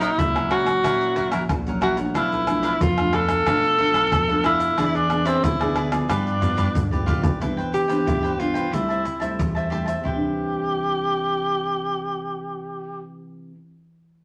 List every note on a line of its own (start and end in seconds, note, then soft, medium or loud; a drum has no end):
0.00 0.15 A#2 medium
0.00 0.29 F#3 medium
0.00 0.29 C#4 soft
0.00 0.20 D#4 loud
0.00 0.10 A#4 medium
0.00 0.10 C#5 medium
0.00 0.10 F#5 medium
0.00 pandeiro medium
0.00 shaker medium
0.18 0.74 C#2 loud
0.18 0.81 A#2 medium
0.18 0.50 E4 loud
0.18 pandeiro medium
0.18 shaker medium
0.18 surdo loud
0.34 0.62 F#3 medium
0.34 0.63 C#4 medium
0.34 0.63 E4 medium
0.34 0.49 A#4 soft
0.34 0.50 C#5 soft
0.34 0.50 F#5 soft
0.34 pandeiro soft
0.34 tamborim medium
0.34 shaker soft
0.50 0.65 E4 medium
0.50 1.51 F#4 loud
0.50 0.66 A#4 medium
0.50 0.66 C#5 medium
0.50 0.64 F#5 medium
0.50 pandeiro medium
0.50 tamborim medium
0.66 0.78 F#3 medium
0.66 0.78 C#4 medium
0.66 0.78 E4 medium
0.66 0.83 A#4 soft
0.66 0.82 C#5 soft
0.66 0.81 F#5 soft
0.66 pandeiro medium
0.66 tamborim medium
0.66 shaker medium
0.66 surdo soft
0.83 1.26 A#2 medium
0.83 1.46 A#2 medium
0.83 1.12 F#3 medium
0.83 1.12 C#4 medium
0.83 1.15 E4 medium
0.83 1.12 E4 medium
0.83 1.16 A#4 medium
0.83 1.16 C#5 medium
0.83 1.16 F#5 medium
0.83 pandeiro medium
0.83 tamborim medium
0.83 shaker medium
0.83 surdo medium
1.01 pandeiro soft
1.01 shaker soft
1.16 1.47 F#3 medium
1.16 1.48 C#4 medium
1.16 1.31 E4 soft
1.16 1.48 E4 medium
1.16 1.31 A#4 soft
1.16 1.32 C#5 medium
1.16 1.32 F#5 medium
1.16 pandeiro medium
1.16 shaker medium
1.16 surdo soft
1.31 1.46 A#1 medium
1.31 1.42 E4 medium
1.31 1.42 A#4 medium
1.31 1.42 C#5 medium
1.31 1.42 F#5 medium
1.31 pandeiro medium
1.31 tamborim medium
1.31 shaker medium
1.31 surdo soft
1.49 2.05 A#1 medium
1.49 2.12 A#2 medium
1.49 pandeiro medium
1.49 tamborim medium
1.49 shaker medium
1.49 surdo medium
1.67 1.94 F#3 medium
1.67 1.94 C#4 medium
1.67 1.94 E4 medium
1.67 1.81 A#4 soft
1.67 1.82 C#5 soft
1.67 1.81 F#5 soft
1.67 pandeiro soft
1.67 shaker soft
1.81 1.97 E4 medium
1.81 1.97 F#4 medium
1.81 1.97 A#4 medium
1.81 1.97 C#5 medium
1.81 1.96 F#5 medium
1.81 pandeiro medium
1.81 tamborim medium
1.81 surdo soft
1.97 2.42 F3 medium
1.97 2.42 A3 medium
1.97 2.43 D4 medium
1.97 2.14 A#4 soft
1.97 2.13 C#5 soft
1.97 2.13 F#5 medium
1.97 pandeiro medium
1.97 shaker medium
2.14 2.71 B1 loud
2.14 2.78 B2 medium
2.14 2.30 D4 medium
2.14 2.84 E4 loud
2.14 2.30 A4 medium
2.14 2.31 B4 medium
2.14 2.31 F5 medium
2.14 pandeiro medium
2.14 tamborim medium
2.14 shaker medium
2.14 surdo medium
2.32 2.62 A4 soft
2.32 2.62 B4 soft
2.32 pandeiro soft
2.32 shaker soft
2.32 surdo soft
2.47 2.78 F3 medium
2.47 2.79 A3 medium
2.47 2.79 D4 medium
2.47 pandeiro medium
2.47 tamborim medium
2.47 shaker medium
2.62 2.72 D4 medium
2.62 2.73 A4 medium
2.62 2.73 B4 medium
2.62 2.73 F5 medium
2.62 pandeiro medium
2.62 shaker medium
2.80 3.36 F2 loud
2.80 3.44 B2 medium
2.80 3.16 F4 loud
2.80 pandeiro medium
2.80 shaker medium
2.80 surdo loud
2.98 3.42 F3 medium
2.98 3.42 A3 medium
2.98 3.42 D4 medium
2.98 3.12 A4 soft
2.98 3.13 B4 soft
2.98 3.12 F5 medium
2.98 pandeiro soft
2.98 tamborim medium
2.98 shaker soft
3.13 3.28 D4 medium
3.13 3.28 A4 medium
3.13 4.45 A4 loud
3.13 3.28 B4 medium
3.13 3.27 F5 medium
3.13 pandeiro medium
3.13 tamborim medium
3.28 3.45 A4 soft
3.28 3.45 B4 soft
3.28 3.44 F5 medium
3.28 pandeiro medium
3.28 tamborim medium
3.28 shaker medium
3.28 surdo soft
3.46 3.88 B2 loud
3.46 4.09 B2 medium
3.46 3.74 F3 medium
3.46 3.75 A3 medium
3.46 3.76 D4 medium
3.46 3.75 D4 medium
3.46 3.77 A4 medium
3.46 3.78 B4 medium
3.46 3.79 F5 medium
3.46 pandeiro medium
3.46 tamborim medium
3.46 shaker medium
3.46 surdo medium
3.63 pandeiro soft
3.63 shaker soft
3.78 4.10 F3 medium
3.78 4.10 A3 medium
3.78 3.93 D4 medium
3.78 4.11 D4 medium
3.78 3.93 A4 soft
3.78 3.93 B4 soft
3.78 3.94 F5 medium
3.78 pandeiro medium
3.78 surdo soft
3.94 4.13 B1 medium
3.94 4.04 D4 medium
3.94 4.04 A4 medium
3.94 4.04 B4 medium
3.94 4.04 F5 medium
3.94 pandeiro medium
3.94 tamborim medium
3.94 shaker medium
3.94 surdo soft
4.12 4.68 F2 medium
4.12 4.75 B2 medium
4.12 pandeiro medium
4.12 tamborim medium
4.12 shaker medium
4.12 surdo loud
4.28 4.73 F3 medium
4.28 4.73 A3 medium
4.28 4.73 D4 medium
4.28 4.43 A4 soft
4.28 4.44 B4 soft
4.28 4.43 F5 medium
4.28 pandeiro soft
4.28 shaker soft
4.44 4.60 D4 medium
4.44 4.97 E4 loud
4.44 4.60 A4 medium
4.44 4.59 B4 medium
4.44 4.58 F5 medium
4.44 pandeiro medium
4.44 tamborim medium
4.44 shaker medium
4.59 4.77 A4 soft
4.59 4.76 B4 soft
4.59 4.76 F5 soft
4.59 pandeiro medium
4.59 shaker medium
4.77 5.34 E2 medium
4.77 5.40 E3 medium
4.77 5.05 B3 medium
4.77 5.06 D4 medium
4.77 4.93 E4 medium
4.77 4.93 G#4 medium
4.77 5.06 G#4 medium
4.77 4.93 B4 medium
4.77 4.93 D5 medium
4.77 pandeiro medium
4.77 tamborim medium
4.77 shaker medium
4.77 surdo medium
4.94 5.28 D4 medium
4.94 5.24 G#4 soft
4.94 5.24 B4 soft
4.94 5.25 D5 soft
4.94 pandeiro soft
4.94 shaker soft
4.94 surdo soft
5.10 5.55 B3 medium
5.10 5.55 D4 medium
5.10 5.55 G#4 medium
5.10 pandeiro medium
5.10 tamborim medium
5.10 shaker medium
5.25 5.45 C4 medium
5.25 5.35 E4 medium
5.25 5.35 G#4 medium
5.25 5.35 B4 medium
5.25 5.36 D5 medium
5.25 pandeiro medium
5.25 shaker medium
5.43 5.99 D2 loud
5.43 6.06 B2 medium
5.43 5.82 E4 medium
5.43 pandeiro medium
5.43 shaker medium
5.43 surdo loud
5.60 5.88 B3 medium
5.60 5.88 D4 medium
5.60 5.88 G#4 medium
5.60 5.75 G#4 soft
5.60 5.75 B4 soft
5.60 5.75 D5 soft
5.60 pandeiro soft
5.60 tamborim medium
5.60 shaker soft
5.75 5.91 E4 medium
5.75 5.91 G#4 medium
5.75 5.91 B4 medium
5.75 5.90 D5 medium
5.75 pandeiro medium
5.75 tamborim medium
5.91 6.37 F3 medium
5.91 6.37 B3 medium
5.91 6.37 E4 medium
5.91 6.08 G#4 soft
5.91 6.08 B4 soft
5.91 6.07 D5 soft
5.91 pandeiro medium
5.91 tamborim medium
5.91 shaker medium
5.91 surdo soft
6.09 6.51 G2 loud
6.09 6.72 G2 medium
6.09 7.04 D4 medium
6.09 6.40 F4 medium
6.09 6.41 G4 medium
6.09 6.41 B4 medium
6.09 6.42 D5 medium
6.09 pandeiro medium
6.09 tamborim loud
6.09 shaker medium
6.09 surdo medium
6.27 pandeiro soft
6.27 shaker soft
6.41 6.73 F3 medium
6.41 6.73 B3 medium
6.41 6.73 E4 medium
6.41 6.56 F4 medium
6.41 6.56 G4 soft
6.41 6.56 B4 medium
6.41 6.57 D5 medium
6.41 surdo loud
6.41 pandeiro medium
6.41 shaker medium
6.41 surdo soft
6.57 6.72 G2 medium
6.57 6.67 F4 medium
6.57 6.67 G4 medium
6.57 6.67 B4 medium
6.57 6.67 D5 medium
6.57 surdo medium
6.57 pandeiro medium
6.57 shaker medium
6.57 surdo soft
6.75 6.89 G2 medium
6.75 7.38 D3 medium
6.75 pandeiro medium
6.75 shaker medium
6.75 surdo medium
6.91 7.07 G1 medium
6.91 7.36 F3 medium
6.91 7.36 B3 medium
6.91 7.37 E4 medium
6.91 7.06 G4 soft
6.91 7.07 B4 soft
6.91 7.07 D5 medium
6.91 pandeiro soft
6.91 shaker soft
6.91 surdo medium
7.06 7.23 A1 medium
7.06 7.22 F4 medium
7.06 7.23 G4 medium
7.06 7.22 B4 medium
7.06 7.21 D5 medium
7.06 pandeiro medium
7.06 surdo loud
7.22 7.39 B1 medium
7.22 7.39 G4 soft
7.22 7.39 B4 soft
7.22 7.38 D5 soft
7.22 pandeiro medium
7.22 shaker medium
7.22 surdo medium
7.40 7.55 C2 medium
7.40 8.04 C3 medium
7.40 7.85 E3 medium
7.40 7.86 B3 medium
7.40 7.86 D4 medium
7.40 7.56 E4 soft
7.40 7.57 B4 medium
7.40 7.56 C5 medium
7.40 7.56 G5 medium
7.40 pandeiro medium
7.40 shaker medium
7.40 surdo medium
7.57 8.00 C3 medium
7.57 7.72 B4 medium
7.57 7.71 C5 soft
7.57 7.72 G5 medium
7.57 pandeiro soft
7.57 shaker soft
7.57 surdo soft
7.72 8.41 G4 loud
7.72 muted cavaquinho stroke soft
7.72 pandeiro medium
7.72 shaker medium
7.88 8.34 E3 medium
7.88 8.34 B3 medium
7.88 8.34 D4 medium
7.88 8.05 B4 medium
7.88 8.06 C5 medium
7.88 8.04 G5 medium
7.88 pandeiro medium
7.88 shaker medium
8.06 8.69 G2 medium
8.06 8.63 C3 medium
8.06 8.22 E4 soft
8.06 8.22 B4 medium
8.06 8.22 C5 soft
8.06 8.21 G5 medium
8.06 pandeiro medium
8.06 shaker medium
8.06 surdo medium
8.23 8.54 B4 medium
8.23 8.55 C5 medium
8.23 8.53 G5 medium
8.23 pandeiro soft
8.23 shaker soft
8.39 8.67 E3 medium
8.39 8.67 B3 medium
8.39 8.68 D4 medium
8.39 8.75 F4 medium
8.39 pandeiro medium
8.54 8.71 B4 medium
8.54 8.71 C5 medium
8.54 8.70 G5 medium
8.54 pandeiro medium
8.54 shaker medium
8.54 surdo soft
8.71 9.01 C2 medium
8.71 9.35 C3 medium
8.71 9.04 G3 soft
8.71 9.04 A3 medium
8.71 9.04 E4 medium
8.71 9.39 E4 medium
8.71 8.87 G4 soft
8.71 8.88 C5 soft
8.71 8.88 E5 soft
8.71 8.87 A5 medium
8.71 pandeiro medium
8.71 shaker medium
8.71 surdo medium
8.89 9.04 C5 soft
8.89 9.04 E5 soft
8.89 9.04 A5 soft
8.89 pandeiro soft
8.89 shaker soft
9.05 muted cavaquinho stroke soft
9.05 pandeiro medium
9.05 shaker medium
9.05 surdo soft
9.20 9.66 G3 soft
9.20 9.66 A3 medium
9.20 9.66 E4 medium
9.20 9.54 C5 soft
9.20 9.53 E5 medium
9.20 9.53 A5 medium
9.20 pandeiro medium
9.20 shaker medium
9.20 surdo soft
9.39 9.95 E2 medium
9.39 10.00 C3 medium
9.39 pandeiro medium
9.39 shaker medium
9.39 surdo medium
9.55 9.70 C5 soft
9.55 9.70 E5 medium
9.55 9.70 A5 medium
9.55 pandeiro soft
9.55 shaker soft
9.70 9.91 G3 medium
9.70 9.91 A3 soft
9.70 9.91 E4 medium
9.70 9.86 G4 medium
9.70 9.86 C5 medium
9.70 9.86 E5 medium
9.70 9.85 A5 medium
9.70 pandeiro medium
9.70 surdo soft
9.86 10.03 C5 medium
9.86 10.03 E5 medium
9.86 10.02 A5 medium
9.86 pandeiro medium
9.86 shaker medium
10.01 13.51 C3 medium
10.01 13.54 E4 medium
10.05 13.03 C2 medium
10.05 13.57 E3 medium
10.05 13.03 G4 medium
10.05 13.56 B4 medium
10.05 13.55 C5 medium
10.05 13.57 G5 medium
10.05 surdo medium
10.16 13.66 D4 medium